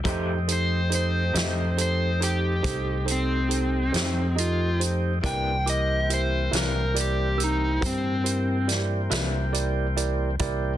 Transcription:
0.04 1.30 F2 medium
0.04 0.30 F3 medium
0.04 0.30 A3 medium
0.04 5.19 A3 medium
0.04 5.19 C4 medium
0.04 5.19 D#4 medium
0.04 0.31 D#4 medium
0.04 0.37 D#4 medium
0.04 5.19 G4 medium
0.04 0.37 G4 medium
0.04 0.31 G4 medium
0.04 0.37 A4 medium
0.04 0.38 C5 medium
0.04 kick medium
0.04 closed hi-hat medium
0.48 0.80 D#4 soft
0.48 0.80 G4 soft
0.48 0.80 A4 soft
0.48 0.80 C5 soft
0.48 closed hi-hat medium
0.53 0.92 C5 medium
0.90 1.23 D#4 soft
0.90 1.23 G4 soft
0.90 1.23 A4 soft
0.90 1.23 C5 soft
0.90 closed hi-hat soft
0.95 1.77 C5 medium
1.33 2.60 F2 medium
1.33 1.61 F3 soft
1.33 1.60 A3 medium
1.33 1.60 D#4 medium
1.33 1.67 D#4 soft
1.33 1.60 G4 medium
1.33 1.67 G4 soft
1.33 1.67 A4 soft
1.33 1.67 D#5 medium
1.33 snare medium
1.33 closed hi-hat medium
1.77 2.10 D#4 soft
1.77 2.10 G4 soft
1.77 2.10 A4 soft
1.77 2.10 C5 medium
1.77 closed hi-hat medium
1.81 2.21 C5 medium
2.20 2.53 D#4 soft
2.20 2.53 G4 soft
2.20 3.06 G4 medium
2.20 2.53 A4 soft
2.20 2.53 C5 soft
2.20 closed hi-hat medium
2.62 3.90 C2 medium
2.62 2.96 D#4 soft
2.62 2.96 G4 soft
2.62 2.96 A4 soft
2.62 2.96 C5 soft
2.62 kick medium
2.62 closed hi-hat medium
3.05 3.39 D#4 soft
3.05 3.39 G4 soft
3.05 3.39 A4 soft
3.05 3.39 C5 medium
3.05 closed hi-hat medium
3.11 4.35 C4 medium
3.49 3.82 D#4 soft
3.49 3.82 G4 soft
3.49 3.82 A4 soft
3.49 3.82 C5 medium
3.49 closed hi-hat soft
3.92 5.19 F2 medium
3.92 4.20 F3 medium
3.92 4.20 A3 medium
3.92 4.25 D#4 soft
3.92 4.20 D#4 medium
3.92 4.26 G4 soft
3.92 4.20 G4 medium
3.92 4.25 A4 soft
3.92 4.25 C5 medium
3.92 snare medium
3.92 closed hi-hat medium
4.36 4.69 D#4 medium
4.36 4.80 F4 medium
4.36 4.69 G4 soft
4.36 4.69 A4 soft
4.36 4.69 D#5 medium
4.36 closed hi-hat soft
4.79 5.12 D#4 soft
4.79 5.12 G4 soft
4.79 5.12 A4 soft
4.79 5.12 C5 medium
4.79 closed hi-hat soft
5.20 6.49 C2 medium
5.20 5.49 C3 medium
5.20 10.35 E3 medium
5.20 5.49 E3 medium
5.20 10.36 A#3 medium
5.20 5.50 A#3 medium
5.20 10.35 C4 medium
5.20 5.55 E4 medium
5.20 10.36 G4 medium
5.20 5.55 G4 medium
5.20 5.56 A#4 medium
5.20 5.56 D5 medium
5.20 kick medium
5.20 closed hi-hat medium
5.24 5.50 D4 medium
5.24 5.66 G5 medium
5.66 5.98 E4 soft
5.66 5.98 G4 soft
5.66 5.99 A#4 soft
5.66 6.10 D#5 medium
5.66 5.98 D6 soft
5.66 closed hi-hat soft
6.10 6.42 E4 soft
6.10 6.42 G4 soft
6.10 6.42 A#4 soft
6.10 6.42 E5 medium
6.10 closed hi-hat soft
6.14 6.53 C5 medium
6.51 7.78 C2 medium
6.51 6.79 C3 medium
6.51 6.79 E3 soft
6.51 6.78 A#3 medium
6.51 6.78 D4 medium
6.51 6.84 E4 soft
6.51 6.84 G4 soft
6.51 6.84 A#4 soft
6.51 6.84 E5 medium
6.51 snare loud
6.51 closed hi-hat medium
6.57 6.97 A#4 medium
6.94 7.27 E4 soft
6.94 7.27 G4 soft
6.94 7.27 A#4 soft
6.94 7.28 D5 medium
6.94 closed hi-hat medium
7.01 7.40 G4 medium
7.38 7.70 C4 soft
7.38 7.71 G4 soft
7.38 7.71 A#4 soft
7.38 7.71 E6 soft
7.38 closed hi-hat medium
7.44 7.83 D#4 medium
7.81 9.07 G2 medium
7.81 8.14 E4 soft
7.81 8.14 G4 soft
7.81 8.14 A#4 soft
7.81 8.14 C5 medium
7.81 kick medium
7.81 closed hi-hat medium
7.86 8.68 C4 medium
8.24 8.57 E4 soft
8.24 8.57 G4 soft
8.24 8.57 A#4 soft
8.24 8.57 C5 medium
8.24 closed hi-hat medium
8.67 9.00 E4 medium
8.67 9.00 G4 soft
8.67 9.00 A#4 soft
8.67 9.00 D5 medium
8.67 snare soft
8.67 closed hi-hat medium
9.10 10.36 C2 medium
9.10 9.37 C3 medium
9.10 9.37 E3 medium
9.10 9.37 A#3 medium
9.10 9.36 D4 medium
9.10 9.43 E4 medium
9.10 9.43 G4 soft
9.10 9.43 A#4 medium
9.10 9.43 E5 medium
9.10 snare medium
9.10 closed hi-hat medium
9.53 9.86 E4 medium
9.53 9.86 G4 medium
9.53 9.86 A#4 medium
9.53 9.86 D5 medium
9.53 closed hi-hat medium
9.96 10.29 E4 medium
9.96 10.29 G4 soft
9.96 10.29 A#4 soft
9.96 10.29 D5 medium
9.96 closed hi-hat soft
10.39 10.77 C2 medium
10.39 10.77 E3 medium
10.39 10.77 A#3 medium
10.39 10.77 C4 medium
10.39 10.72 E4 medium
10.39 10.73 G4 medium
10.39 10.77 G4 medium
10.39 10.72 A#4 medium
10.39 10.73 D5 medium
10.39 kick medium
10.39 closed hi-hat medium

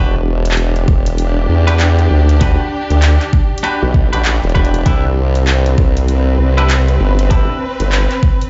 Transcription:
0.00 0.86 E1 medium
0.00 0.14 D4 medium
0.00 6.04 D4 medium
0.00 0.14 F#4 medium
0.00 0.14 G4 medium
0.00 0.14 B4 medium
0.15 cross-stick soft
0.45 closed hi-hat medium
0.51 clap loud
0.57 closed hi-hat medium
0.67 5.91 G4 medium
0.76 closed hi-hat soft
0.88 1.47 E1 loud
0.88 kick loud
0.88 cross-stick medium
1.06 closed hi-hat medium
1.18 closed hi-hat medium
1.49 2.09 E2 loud
1.67 1.79 D4 medium
1.67 1.79 F#4 medium
1.67 1.79 G4 medium
1.67 1.79 B4 medium
1.67 closed hi-hat medium
1.80 clap loud
1.80 closed hi-hat medium
1.99 cross-stick soft
1.99 closed hi-hat soft
2.11 2.57 D2 medium
2.29 closed hi-hat medium
2.41 2.66 D4 medium
2.41 2.66 F#4 medium
2.41 2.66 G4 medium
2.41 2.66 B4 medium
2.41 kick loud
2.41 closed hi-hat medium
2.60 cross-stick soft
2.90 3.18 D2 loud
2.90 closed hi-hat medium
3.02 clap loud
3.02 closed hi-hat medium
3.21 clap soft
3.21 closed hi-hat soft
3.33 kick loud
3.58 closed hi-hat medium
3.63 3.82 D4 medium
3.63 3.82 F#4 medium
3.63 3.82 G4 medium
3.63 3.82 B4 medium
3.63 closed hi-hat medium
3.83 4.10 B1 medium
3.94 kick loud
4.13 4.41 A1 medium
4.13 4.35 D4 medium
4.13 4.35 F#4 medium
4.13 4.35 G4 medium
4.13 4.35 B4 medium
4.13 closed hi-hat medium
4.25 clap loud
4.25 closed hi-hat medium
4.43 4.84 E1 loud
4.43 closed hi-hat soft
4.49 closed hi-hat soft
4.55 4.81 D4 medium
4.55 4.81 F#4 medium
4.55 4.81 G4 medium
4.55 4.81 B4 medium
4.55 kick medium
4.55 closed hi-hat soft
4.65 closed hi-hat soft
4.74 closed hi-hat soft
4.85 5.76 C2 medium
4.85 8.50 C4 medium
4.85 5.04 D4 medium
4.85 5.04 E4 medium
4.85 5.04 G4 medium
4.85 5.04 B4 medium
4.85 kick loud
4.85 closed hi-hat medium
5.05 cross-stick soft
5.06 cross-stick soft
5.12 cross-stick soft
5.35 closed hi-hat medium
5.47 clap loud
5.47 closed hi-hat medium
5.54 8.50 B4 medium
5.66 closed hi-hat soft
5.78 6.37 C2 loud
5.78 kick loud
5.78 cross-stick soft
5.97 closed hi-hat medium
6.08 closed hi-hat medium
6.39 6.98 C2 loud
6.57 6.69 D4 medium
6.57 6.69 E4 medium
6.57 6.69 G4 medium
6.57 6.69 B4 medium
6.57 closed hi-hat soft
6.70 clap loud
6.70 closed hi-hat medium
6.88 cross-stick soft
6.88 closed hi-hat soft
7.00 7.47 G1 medium
7.19 closed hi-hat soft
7.30 7.56 D4 medium
7.30 7.56 E4 medium
7.30 7.56 G4 medium
7.30 7.56 B4 medium
7.30 kick loud
7.30 closed hi-hat medium
7.49 cross-stick soft
7.80 8.08 G1 loud
7.80 closed hi-hat medium
7.92 clap loud
7.92 closed hi-hat medium
8.11 clap soft
8.11 closed hi-hat soft
8.23 kick loud
8.41 closed hi-hat soft

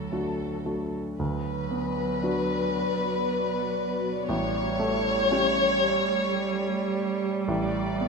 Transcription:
0.00 1.19 D2 soft
0.00 0.96 F#3 soft
0.00 0.99 A4 soft
0.12 0.61 A3 soft
0.12 0.62 D4 soft
0.12 0.62 F#4 soft
0.65 1.15 A3 soft
0.65 1.15 D4 soft
0.65 1.16 F#4 soft
1.19 2.71 D2 soft
1.19 4.24 F#3 soft
1.19 4.25 B3 medium
1.19 4.25 F#4 medium
1.19 4.25 B4 medium
1.19 4.25 D5 medium
1.71 2.54 B3 soft
2.23 4.25 D4 soft
2.23 4.25 F#4 soft
4.28 5.82 A1 medium
4.28 8.08 G3 medium
4.28 7.48 A3 medium
4.28 7.48 G4 medium
4.28 7.48 C#5 medium
4.28 7.28 C#5 medium
4.79 5.64 A3 medium
5.32 7.44 C#4 medium
5.32 7.44 G4 medium
7.47 8.08 A1 medium
7.47 8.08 B3 medium
7.47 8.08 F#4 medium
7.47 8.08 D5 medium
8.00 8.08 B3 soft

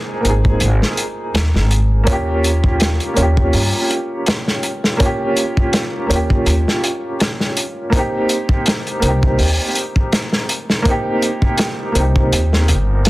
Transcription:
0.00 0.19 A#3 medium
0.00 0.21 C4 medium
0.00 0.22 D#4 medium
0.00 0.23 G#4 medium
0.21 2.02 A#3 medium
0.21 2.03 C4 medium
0.25 0.57 G#1 medium
0.25 2.05 D#4 medium
0.25 closed hi-hat medium
0.30 2.06 G#4 medium
0.45 kick medium
0.60 0.79 G#1 medium
0.60 closed hi-hat medium
0.82 snare soft
0.97 closed hi-hat medium
1.34 1.56 D#2 medium
1.34 snare loud
1.34 closed hi-hat medium
1.54 2.04 G#1 medium
1.54 snare soft
1.71 closed hi-hat medium
2.04 2.97 D#2 medium
2.04 3.11 A#3 medium
2.04 3.13 C#4 medium
2.04 kick loud
2.04 closed hi-hat medium
2.09 3.14 F4 medium
2.09 3.16 G4 loud
2.44 closed hi-hat medium
2.64 kick medium
2.80 snare loud
2.80 closed hi-hat medium
3.00 closed hi-hat soft
3.14 3.50 D#2 medium
3.14 4.95 A#3 medium
3.14 4.96 C#4 medium
3.14 closed hi-hat medium
3.20 4.97 F4 medium
3.20 4.99 G4 medium
3.37 kick medium
3.53 3.71 G2 medium
3.53 open hi-hat medium
3.91 closed hi-hat medium
4.26 snare loud
4.26 closed hi-hat medium
4.48 snare medium
4.63 closed hi-hat medium
4.84 snare medium
4.97 6.04 A#3 medium
4.97 6.06 C#4 medium
4.97 kick loud
4.97 closed hi-hat medium
5.03 6.07 F4 medium
5.03 6.09 G4 loud
5.37 closed hi-hat medium
5.57 kick medium
5.73 snare loud
5.73 closed hi-hat medium
6.07 6.42 D#2 medium
6.07 7.87 A#3 medium
6.07 7.89 C#4 medium
6.07 closed hi-hat medium
6.13 7.90 F4 medium
6.13 7.92 G4 medium
6.30 kick medium
6.46 6.64 D#2 medium
6.46 closed hi-hat medium
6.68 snare soft
6.84 closed hi-hat medium
7.20 snare loud
7.20 closed hi-hat medium
7.40 snare soft
7.57 closed hi-hat medium
7.90 8.97 A#3 medium
7.90 8.99 C4 medium
7.90 kick loud
7.90 closed hi-hat medium
7.96 9.00 D#4 medium
7.96 9.02 G4 medium
8.29 closed hi-hat medium
8.49 kick medium
8.66 snare loud
8.66 closed hi-hat medium
8.87 closed hi-hat soft
9.00 9.35 C2 medium
9.00 10.80 A#3 medium
9.00 10.82 C4 medium
9.00 closed hi-hat medium
9.05 10.83 D#4 medium
9.05 10.84 G4 medium
9.23 kick medium
9.39 9.57 D#2 medium
9.39 open hi-hat medium
9.75 closed hi-hat medium
9.96 kick medium
10.12 snare loud
10.12 closed hi-hat medium
10.33 snare medium
10.49 closed hi-hat medium
10.70 snare medium
10.82 11.90 A#3 medium
10.82 11.91 C4 medium
10.82 kick loud
10.82 closed hi-hat medium
10.88 11.93 D#4 medium
10.88 11.94 G4 loud
11.22 closed hi-hat medium
11.42 kick medium
11.58 snare loud
11.58 closed hi-hat medium
11.92 12.28 C2 medium
11.92 13.10 A#3 medium
11.92 13.10 C4 medium
11.92 closed hi-hat medium
11.98 13.10 D#4 medium
11.98 13.10 G4 medium
12.16 kick medium
12.32 12.70 D#2 medium
12.32 closed hi-hat medium
12.53 snare soft
12.68 13.10 G1 medium
12.68 closed hi-hat medium
13.05 snare medium
13.05 closed hi-hat medium

